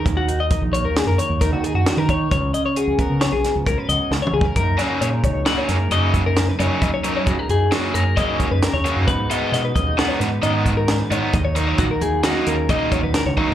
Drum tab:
HH |x--x--x--x--x--x--x--x--x--x--|x--x--x--x--x--x--x--x--------|x--x--x--x--x--x--x--x--x--x--|x--x--x--x--x--x--x--x--x--x--|
SD |------------o-----o-----o-----|------------o--o--------o-----|---o--------o--o--------o-----|------------o-----------o-----|
T2 |------------------------------|--------------------------o---|------------------------------|------------------------------|
BD |o-----o-----------o--------o--|o--------o--------o---------o-|o--------o-----------o--------|o-----o-----------o--o--------|

HH |x--x--x--x--x--x--x--x--x--x--|x--x--x--x--x--x--x--x--x-----|
SD |------o-----o--o--------o-----|------------o-----------o-----|
T2 |------------------------------|------------------------------|
BD |o--------o-----------o--------|o-----o-----------o--o-----o--|